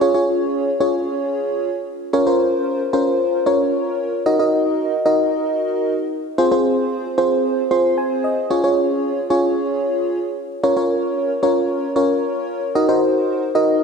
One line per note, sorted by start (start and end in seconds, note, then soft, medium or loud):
0.01 0.12 C#4 medium
0.01 0.12 F4 medium
0.01 0.12 G#4 medium
0.01 0.12 C#5 medium
0.14 0.70 C#4 medium
0.14 0.70 F4 medium
0.14 0.70 G#4 medium
0.14 0.70 C#5 medium
0.80 1.69 C#4 medium
0.80 1.69 F4 medium
0.80 1.69 G#4 medium
0.80 1.69 C#5 medium
2.13 2.25 C#4 medium
2.13 2.25 F4 medium
2.13 2.25 A#4 medium
2.13 2.25 C#5 medium
2.27 2.82 C#4 medium
2.27 2.82 F4 medium
2.27 2.82 A#4 medium
2.27 2.82 C5 medium
2.93 3.38 C#4 medium
2.93 3.38 F4 medium
2.93 3.38 A#4 medium
2.93 3.38 C5 medium
3.46 4.13 C#4 medium
3.46 4.13 F4 medium
3.46 4.13 A#4 medium
3.46 4.13 C#5 medium
4.26 4.37 D#4 medium
4.26 4.37 F#4 medium
4.26 4.37 A#4 medium
4.26 4.37 D#5 medium
4.39 4.95 D#4 medium
4.39 4.95 F#4 medium
4.39 4.95 A#4 medium
4.39 4.95 D#5 medium
5.06 5.94 D#4 medium
5.06 5.94 F#4 medium
5.06 5.94 A#4 medium
5.06 5.94 D#5 medium
6.38 6.49 C4 medium
6.38 6.49 F4 medium
6.38 6.49 G#4 medium
6.38 6.49 C5 medium
6.51 7.07 C4 medium
6.51 7.07 F4 medium
6.51 7.07 G#4 medium
6.51 7.07 C5 medium
7.18 7.62 C4 medium
7.18 7.62 F4 medium
7.18 7.62 G#4 medium
7.18 7.62 C5 medium
7.71 8.38 C4 medium
7.71 8.38 F4 medium
7.71 8.38 G#4 medium
7.71 8.38 C5 medium
7.71 7.96 C6 medium
7.98 8.22 G#5 medium
8.24 8.49 D#5 medium
8.50 8.62 C#4 medium
8.50 8.62 F4 medium
8.50 8.62 G#4 medium
8.50 8.62 C#5 medium
8.64 9.19 C#4 medium
8.64 9.19 F4 medium
8.64 9.19 G#4 medium
8.64 9.19 C#5 medium
9.30 10.19 C#4 medium
9.30 10.19 F4 medium
9.30 10.19 G#4 medium
9.30 10.19 C#5 medium
10.63 10.74 C#4 medium
10.63 10.74 F4 medium
10.63 10.74 A#4 medium
10.63 10.74 C#5 loud
10.77 11.32 C#4 medium
10.77 11.32 F4 medium
10.77 11.32 A#4 medium
10.77 11.32 C#5 medium
11.43 11.87 C#4 medium
11.43 11.87 F4 medium
11.43 11.87 A#4 medium
11.43 11.87 C#5 medium
11.96 12.62 C#4 medium
11.96 12.62 F4 medium
11.96 12.62 A#4 medium
11.96 12.62 C#5 medium
12.75 12.87 D#4 medium
12.75 12.87 F#4 medium
12.75 12.87 A#4 medium
12.75 12.87 D#5 medium
12.89 13.44 D#4 medium
12.89 13.44 F#4 medium
12.89 13.44 A#4 medium
12.89 13.44 C5 medium
13.55 13.84 D#4 medium
13.55 13.84 F#4 medium
13.55 13.84 A#4 medium
13.55 13.84 D#5 medium